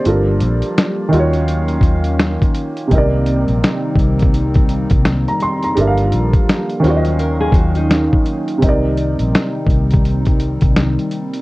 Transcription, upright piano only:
0.00 0.26 C5 medium
0.04 1.12 G3 medium
0.04 1.12 D4 medium
0.04 1.12 F4 medium
0.04 1.14 A4 medium
0.10 1.14 A#4 medium
1.09 2.85 D#3 medium
1.09 2.87 D#4 medium
1.14 2.88 F4 medium
1.14 2.89 F#4 medium
1.19 2.91 C#5 medium
2.88 5.71 C3 medium
2.88 5.72 C4 medium
2.93 5.74 D#4 medium
2.93 5.75 A#4 medium
2.98 5.76 D5 medium
5.28 5.41 A#5 medium
5.42 5.62 C6 medium
5.64 5.97 A#5 medium
5.75 6.83 G3 medium
5.75 6.84 D4 medium
5.75 6.84 A4 medium
5.79 6.85 A#4 medium
5.79 5.86 E5 medium
5.87 6.89 F5 medium
6.80 8.57 D#3 medium
6.80 8.58 C#4 medium
6.85 8.59 F4 medium
6.85 8.61 F#4 medium
6.90 6.95 D5 medium
6.97 8.65 D#5 medium
8.58 11.42 C3 medium
8.58 11.42 C4 medium
8.64 11.42 D#4 medium
8.64 11.42 A#4 medium
8.69 11.42 D5 medium

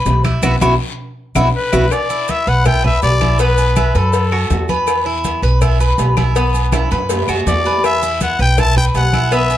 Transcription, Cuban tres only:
0.00 0.23 B4 medium
0.24 0.42 E4 medium
0.43 0.55 B3 medium
0.43 0.55 E4 loud
0.43 0.55 F#4 medium
0.61 0.73 B3 medium
0.61 0.73 E4 loud
0.61 0.73 F#4 medium
1.36 1.48 B3 medium
1.36 1.48 E4 loud
1.36 1.48 F#4 medium
1.72 1.85 B3 medium
1.72 1.85 E4 medium
1.72 1.85 F#4 medium
2.10 2.46 E4 medium
2.47 2.65 B4 medium
2.66 2.83 E4 medium
2.84 3.20 B4 medium
3.21 3.39 E4 medium
3.40 3.76 B3 medium
3.77 3.95 E4 medium
3.95 4.31 B4 medium
4.32 4.68 F#4 medium
4.69 5.05 B4 medium
5.06 5.42 E4 medium
5.43 5.61 B4 medium
5.62 5.80 E4 medium
5.80 6.16 B4 medium
6.17 6.35 E4 medium
6.36 6.72 B3 medium
6.73 6.91 E4 medium
6.92 7.27 B4 medium
7.29 7.65 F#4 medium
7.66 8.02 B4 medium
8.03 8.39 E4 medium
8.40 8.58 B4 medium
8.58 8.76 E4 medium
8.77 9.12 B4 medium
9.14 9.32 E4 medium
9.32 9.57 B3 loud

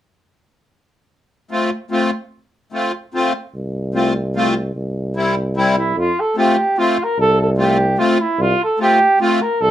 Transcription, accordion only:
1.51 1.70 A3 medium
1.51 1.70 C4 soft
1.51 1.70 F4 soft
1.91 2.10 A3 soft
1.91 2.11 C4 soft
1.91 2.11 F4 medium
2.72 2.92 A3 soft
2.72 2.92 C4 soft
2.72 2.92 F4 soft
3.14 3.33 A3 medium
3.14 3.33 C4 soft
3.14 3.33 F4 medium
3.94 4.13 A3 soft
3.94 4.13 C4 soft
3.94 4.14 F4 medium
4.36 4.54 A3 soft
4.36 4.54 C4 medium
4.36 4.54 F4 medium
5.16 5.35 G3 soft
5.16 5.35 C4 soft
5.16 5.35 E4 medium
5.56 5.76 G3 medium
5.56 5.76 C4 medium
5.56 5.76 E4 medium
6.36 6.56 A3 soft
6.36 6.56 C4 soft
6.36 6.57 F4 medium
6.78 6.97 A3 medium
6.78 6.98 C4 soft
6.78 6.97 F4 medium
7.58 7.77 A3 soft
7.58 7.78 C4 soft
7.58 7.78 F4 soft
7.98 8.18 A3 medium
7.98 8.18 C4 soft
7.98 8.18 F4 medium
8.79 8.99 A3 medium
8.79 8.99 C4 soft
8.79 8.99 F4 medium
9.20 9.40 A3 medium
9.20 9.40 C4 medium
9.20 9.40 F4 medium

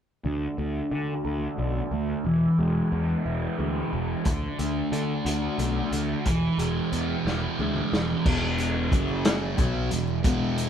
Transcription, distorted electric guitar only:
0.25 1.92 D3 medium
0.58 1.57 D4 medium
0.91 2.25 F#4 medium
1.25 2.25 A4 medium
1.59 2.25 D4 medium
1.92 2.25 A3 medium
2.26 3.92 E3 medium
2.59 3.58 G#3 medium
2.92 4.25 B3 medium
3.25 4.25 E4 medium
3.59 4.26 G#3 medium
3.93 4.25 E3 medium
4.25 5.91 D3 medium
4.59 5.58 A3 medium
4.92 6.25 D4 medium
5.25 6.26 F#4 medium
5.59 6.26 A3 medium
5.92 6.26 D3 medium
6.26 7.91 E3 medium
6.59 7.58 G#3 medium
6.92 8.25 B3 medium
7.26 8.26 E4 medium
7.59 8.25 G#3 medium
7.92 8.24 E3 medium
8.25 8.91 E2 medium
8.25 8.91 B2 loud
8.25 8.91 E3 medium
8.91 9.57 F#2 medium
8.91 9.57 C#3 loud
8.91 9.56 F#3 loud
9.57 9.90 B2 medium
9.57 9.90 F#3 medium
9.57 9.91 B3 medium
9.91 10.18 E2 medium
9.91 10.18 B2 medium
10.23 10.70 E2 medium
10.23 10.70 B2 medium
10.23 10.70 E3 medium

